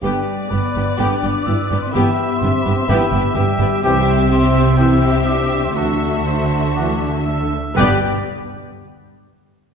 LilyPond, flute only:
\new Staff \with { instrumentName = "Flute" } { \time 4/4 \key g \major \tempo 4 = 125 g''4 b''4 d'''4 e'''8 d'''16 c'''16 | b''4 c'''8 b''16 c'''16 b''4 g''4 | g''4 c'''4 e'''4 d'''8. c'''16 | a''2.~ a''8 r8 |
g''8 r2. r8 | }